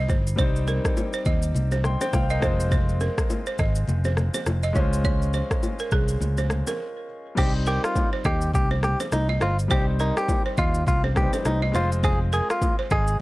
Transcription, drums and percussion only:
0.08 kick loud
0.08 high bongo medium
0.08 shaker medium
0.27 shaker medium
0.38 kick loud
0.38 low conga medium
0.38 shaker medium
0.56 shaker soft
0.67 low bongo medium
0.67 shaker medium
0.85 kick loud
0.85 cross-stick loud
0.85 shaker medium
0.97 high bongo medium
0.97 shaker medium
1.13 shaker medium
1.25 kick loud
1.25 shaker medium
1.42 shaker medium
1.54 low conga medium
1.54 shaker medium
1.71 low bongo medium
1.71 shaker medium
1.84 cross-stick medium
1.84 low conga medium
1.84 shaker medium
2.01 low bongo medium
2.01 shaker loud
2.13 kick medium
2.13 cross-stick medium
2.13 high bongo medium
2.13 shaker medium
2.30 shaker medium
2.41 kick loud
2.41 cross-stick loud
2.41 high bongo medium
2.41 shaker medium
2.60 shaker medium
2.71 kick loud
2.71 low conga medium
2.71 shaker medium
2.89 shaker medium
3.00 low bongo medium
3.00 shaker soft
3.18 kick loud
3.18 cross-stick loud
3.18 shaker medium
3.30 high bongo medium
3.30 shaker medium
3.46 shaker medium
3.58 kick loud
3.58 cross-stick medium
3.58 shaker medium
3.75 shaker medium
3.88 low conga medium
3.88 shaker medium
4.04 low bongo medium
4.04 shaker medium
4.17 cross-stick medium
4.17 low conga medium
4.17 shaker medium
4.34 low bongo medium
4.34 shaker loud
4.46 cross-stick medium
4.46 high bongo medium
4.46 shaker medium
4.63 shaker medium
4.75 kick loud
4.75 high bongo medium
4.75 shaker medium
4.93 shaker loud
5.04 kick loud
5.04 low conga medium
5.04 shaker medium
5.22 shaker medium
5.33 low bongo medium
5.33 shaker soft
5.51 kick loud
5.51 cross-stick loud
5.51 shaker medium
5.63 high bongo medium
5.63 shaker medium
5.79 shaker medium
5.91 kick loud
5.91 cross-stick loud
5.91 shaker medium
6.08 shaker medium
6.21 low conga medium
6.21 shaker medium
6.37 low bongo medium
6.37 shaker medium
6.50 cross-stick medium
6.50 low conga medium
6.50 shaker medium
6.67 low bongo medium
6.67 shaker loud
7.37 kick loud
7.37 crash loud
7.37 low conga medium
7.37 shaker medium
7.66 shaker medium
7.84 cross-stick loud
7.84 shaker medium
7.96 kick medium
7.96 high bongo medium
7.96 shaker medium
8.24 kick loud
8.24 cross-stick loud
8.24 shaker medium
8.41 shaker medium
8.53 kick medium
8.53 low conga medium
8.53 shaker medium
8.71 low bongo medium
8.83 cross-stick loud
8.83 low conga medium
8.83 shaker medium
9.00 low bongo medium
9.00 shaker medium
9.12 cross-stick medium
9.12 high bongo medium
9.12 shaker medium
9.29 high bongo medium
9.41 cross-stick loud
9.41 high bongo medium
9.41 shaker medium
9.59 shaker medium
9.70 kick loud
9.70 low conga medium
9.70 shaker medium
9.99 shaker medium
10.17 cross-stick loud
10.17 shaker medium
10.29 kick medium
10.29 high bongo medium
10.29 shaker medium
10.57 kick loud
10.57 shaker medium
10.74 shaker medium
10.87 kick medium
10.87 low conga medium
10.87 shaker medium
11.04 low bongo medium
11.16 kick loud
11.16 cross-stick loud
11.16 low conga medium
11.16 shaker medium
11.33 low bongo medium
11.33 shaker medium
11.45 cross-stick medium
11.45 high bongo medium
11.45 shaker medium
11.62 high bongo medium
11.73 high bongo medium
11.73 shaker medium
11.92 shaker medium
12.03 kick loud
12.03 low conga medium
12.03 shaker medium
12.32 shaker medium
12.50 cross-stick loud
12.50 shaker medium
12.62 kick medium
12.62 high bongo medium
12.62 shaker medium
12.90 kick loud
12.90 cross-stick loud
12.90 shaker medium
13.07 shaker medium

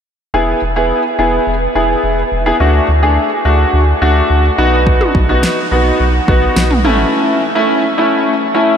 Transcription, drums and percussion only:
4.87 kick loud
5.01 mid tom medium
5.15 kick medium
5.43 snare loud
6.28 kick medium
6.56 snare loud
6.71 mid tom medium
6.85 mid tom medium

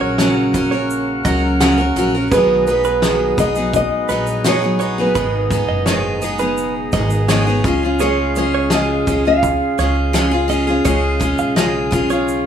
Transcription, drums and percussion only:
0.18 snare loud
0.18 shaker medium
0.54 kick medium
0.54 shaker medium
0.90 shaker medium
1.25 kick loud
1.25 shaker medium
1.60 snare loud
1.60 shaker medium
1.97 shaker soft
2.32 kick loud
2.32 shaker medium
2.67 shaker medium
2.84 shaker medium
3.02 snare loud
3.02 shaker medium
3.38 kick medium
3.38 shaker medium
3.55 shaker medium
3.74 kick medium
3.74 shaker medium
4.09 shaker medium
4.27 shaker medium
4.44 snare loud
4.44 shaker medium
4.80 shaker soft
5.15 kick loud
5.15 shaker medium
5.51 kick loud
5.51 shaker medium
5.86 snare loud
5.86 shaker medium
6.22 shaker medium
6.39 shaker medium
6.57 shaker medium
6.92 kick loud
6.92 shaker medium
7.10 shaker medium
7.28 snare loud
7.28 shaker medium
7.64 kick loud
7.64 shaker soft
7.99 shaker medium
8.36 shaker medium
8.70 snare loud
8.70 shaker medium
9.07 kick medium
9.07 shaker medium
9.43 kick loud
9.43 shaker medium
9.78 snare soft
9.78 shaker medium
10.14 snare loud
10.14 shaker medium
10.50 shaker soft
10.85 kick loud
10.85 shaker medium
11.21 kick loud
11.21 shaker medium
11.38 shaker medium
11.56 snare loud
11.56 shaker medium
11.92 kick medium
11.92 shaker medium
12.10 shaker medium
12.28 shaker medium

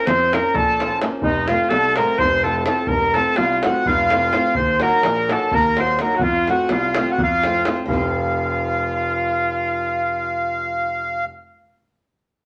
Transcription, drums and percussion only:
0.07 davul high medium
0.20 davul high soft
0.33 davul high medium
0.55 davul low medium
0.80 davul high medium
0.91 davul high soft
1.02 davul high medium
1.22 davul low medium
1.48 davul high medium
1.71 davul high medium
1.83 davul high soft
1.96 davul high medium
2.19 davul low medium
2.55 davul high soft
2.66 davul high medium
2.87 davul low medium
3.14 davul high medium
3.36 davul high medium
3.50 davul high soft
3.63 davul high medium
3.86 davul low medium
4.10 davul high medium
4.22 davul high soft
4.33 davul high medium
4.55 davul low loud
4.80 davul high medium
5.03 davul high medium
5.17 davul high soft
5.29 davul high medium
5.52 davul low loud
5.77 davul high medium
5.88 davul high soft
5.99 davul high medium
6.19 davul low medium
6.34 davul high soft
6.48 davul high medium
6.59 davul high soft
6.69 davul high medium
6.83 davul high soft
6.95 davul high medium
7.07 davul high soft
7.18 davul low medium
7.43 davul high medium
7.54 davul high soft
7.65 davul high medium
7.76 davul high soft
7.88 davul low medium

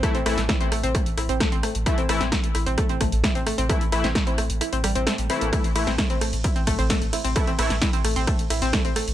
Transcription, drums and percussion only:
0.03 kick loud
0.03 cross-stick loud
0.03 closed hi-hat medium
0.15 closed hi-hat soft
0.26 cross-stick loud
0.26 open hi-hat loud
0.38 snare medium
0.38 closed hi-hat soft
0.49 kick loud
0.49 cross-stick medium
0.49 snare loud
0.49 closed hi-hat medium
0.61 closed hi-hat medium
0.72 cross-stick loud
0.72 open hi-hat medium
0.83 closed hi-hat medium
0.95 kick loud
0.95 cross-stick loud
0.95 closed hi-hat medium
1.06 closed hi-hat medium
1.18 cross-stick medium
1.18 open hi-hat loud
1.29 closed hi-hat soft
1.40 kick loud
1.40 cross-stick loud
1.40 snare loud
1.40 closed hi-hat medium
1.52 closed hi-hat soft
1.63 cross-stick medium
1.63 open hi-hat medium
1.75 closed hi-hat soft
1.86 kick loud
1.86 cross-stick medium
1.86 closed hi-hat medium
1.98 closed hi-hat medium
2.09 cross-stick medium
2.09 open hi-hat loud
2.21 snare medium
2.21 closed hi-hat medium
2.32 kick loud
2.32 cross-stick medium
2.32 snare loud
2.32 closed hi-hat medium
2.44 closed hi-hat medium
2.55 cross-stick medium
2.55 open hi-hat medium
2.66 closed hi-hat medium
2.78 kick loud
2.78 cross-stick loud
2.78 closed hi-hat medium
2.89 closed hi-hat medium
3.01 kick medium
3.01 cross-stick loud
3.01 open hi-hat loud
3.12 closed hi-hat soft
3.24 kick loud
3.24 cross-stick medium
3.24 snare loud
3.24 closed hi-hat medium
3.35 closed hi-hat medium
3.47 cross-stick loud
3.47 open hi-hat medium
3.58 closed hi-hat medium
3.69 kick loud
3.69 cross-stick loud
3.69 closed hi-hat loud
3.81 closed hi-hat medium
3.92 cross-stick medium
3.92 open hi-hat loud
4.04 snare medium
4.04 closed hi-hat medium
4.15 kick loud
4.15 cross-stick medium
4.15 snare loud
4.15 closed hi-hat medium
4.27 closed hi-hat medium
4.38 cross-stick medium
4.38 open hi-hat medium
4.50 closed hi-hat medium
4.61 cross-stick medium
4.61 closed hi-hat loud
4.73 closed hi-hat medium
4.84 cross-stick loud
4.84 open hi-hat loud
4.95 closed hi-hat medium
5.07 cross-stick loud
5.07 snare loud
5.07 closed hi-hat loud
5.18 closed hi-hat medium
5.30 cross-stick medium
5.30 open hi-hat medium
5.41 closed hi-hat medium
5.53 kick loud
5.53 cross-stick medium
5.53 closed hi-hat loud
5.53 ride medium
5.64 closed hi-hat medium
5.76 cross-stick medium
5.76 open hi-hat loud
5.76 ride medium
5.87 snare medium
5.87 closed hi-hat medium
5.98 kick loud
5.98 cross-stick medium
5.98 snare loud
5.98 closed hi-hat medium
5.98 ride medium
6.10 closed hi-hat medium
6.21 cross-stick medium
6.21 open hi-hat loud
6.21 ride medium
6.33 closed hi-hat medium
6.44 kick loud
6.44 cross-stick medium
6.44 closed hi-hat loud
6.44 ride medium
6.56 closed hi-hat medium
6.67 kick medium
6.67 cross-stick medium
6.67 open hi-hat loud
6.67 ride medium
6.79 closed hi-hat medium
6.90 kick loud
6.90 cross-stick medium
6.90 snare loud
6.90 closed hi-hat loud
6.90 ride medium
7.02 closed hi-hat medium
7.13 cross-stick medium
7.13 open hi-hat medium
7.13 ride medium
7.25 closed hi-hat medium
7.36 kick loud
7.36 cross-stick medium
7.36 closed hi-hat loud
7.36 ride medium
7.47 closed hi-hat medium
7.59 cross-stick medium
7.59 open hi-hat loud
7.59 ride medium
7.70 snare medium
7.70 closed hi-hat medium
7.82 kick loud
7.82 cross-stick medium
7.82 snare loud
7.82 closed hi-hat loud
7.82 ride medium
7.93 closed hi-hat medium
8.05 cross-stick medium
8.05 open hi-hat loud
8.05 ride medium
8.16 closed hi-hat medium
8.27 kick loud
8.27 cross-stick medium
8.27 closed hi-hat loud
8.27 ride medium
8.39 closed hi-hat medium
8.50 cross-stick medium
8.50 open hi-hat loud
8.50 ride medium
8.62 closed hi-hat medium
8.73 kick loud
8.73 cross-stick medium
8.73 snare loud
8.73 closed hi-hat loud
8.73 ride medium
8.85 closed hi-hat medium
8.96 cross-stick medium
8.96 open hi-hat loud
8.96 ride medium
9.08 closed hi-hat medium

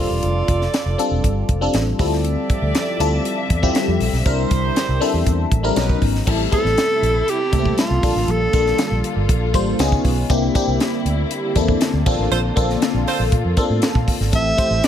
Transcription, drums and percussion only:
0.23 closed hi-hat medium
0.48 kick medium
0.48 closed hi-hat medium
0.62 snare soft
0.74 snare loud
0.74 closed hi-hat medium
0.99 closed hi-hat medium
1.24 kick medium
1.24 closed hi-hat medium
1.49 kick medium
1.49 closed hi-hat medium
1.74 snare loud
1.74 closed hi-hat medium
1.99 kick loud
1.99 open hi-hat medium
2.13 snare soft
2.25 closed hi-hat medium
2.50 kick medium
2.50 closed hi-hat medium
2.75 snare loud
2.75 closed hi-hat medium
3.00 closed hi-hat medium
3.25 closed hi-hat medium
3.50 kick medium
3.50 closed hi-hat medium
3.63 kick medium
3.75 snare loud
3.75 closed hi-hat medium
4.00 open hi-hat medium
4.14 snare soft
4.26 kick loud
4.26 closed hi-hat medium
4.51 kick medium
4.51 closed hi-hat medium
4.76 snare loud
4.76 closed hi-hat medium
5.02 open hi-hat medium
5.27 kick medium
5.27 closed hi-hat medium
5.52 kick medium
5.52 closed hi-hat medium
5.76 snare loud
5.76 closed hi-hat medium
5.89 kick medium
6.02 kick medium
6.02 open hi-hat medium
6.15 snare soft
6.27 kick loud
6.27 crash medium
6.52 kick loud
6.52 closed hi-hat medium
6.66 snare soft
6.78 snare loud
6.78 closed hi-hat medium
7.03 closed hi-hat medium
7.28 closed hi-hat medium
7.53 kick loud
7.53 closed hi-hat medium
7.66 kick medium
7.78 snare loud
7.78 closed hi-hat medium
8.03 kick loud
8.03 open hi-hat medium
8.17 snare soft
8.28 closed hi-hat medium
8.53 kick loud
8.53 closed hi-hat medium
8.66 snare soft
8.78 snare loud
8.78 closed hi-hat medium
9.04 closed hi-hat medium
9.29 kick medium
9.29 closed hi-hat medium
9.54 kick medium
9.54 closed hi-hat medium
9.79 snare loud
9.79 closed hi-hat medium
9.92 kick medium
10.05 kick medium
10.05 open hi-hat medium
10.30 kick loud
10.30 closed hi-hat medium
10.55 kick loud
10.55 closed hi-hat medium
10.80 snare loud
10.80 closed hi-hat medium
11.06 closed hi-hat medium
11.31 closed hi-hat medium
11.56 kick loud
11.56 closed hi-hat medium
11.68 kick medium
11.81 snare loud
11.81 closed hi-hat medium
12.06 kick loud
12.06 crash medium
12.32 closed hi-hat medium
12.57 kick loud
12.57 closed hi-hat medium
12.70 snare soft
12.82 snare loud
12.82 closed hi-hat medium
13.08 open hi-hat medium
13.32 kick medium
13.32 closed hi-hat medium
13.57 kick loud
13.57 closed hi-hat medium
13.82 snare loud
13.82 closed hi-hat medium
13.95 kick medium
14.08 kick medium
14.08 open hi-hat medium
14.21 snare soft
14.33 kick loud
14.33 closed hi-hat medium
14.58 kick medium
14.58 closed hi-hat medium
14.84 snare loud
14.84 closed hi-hat medium

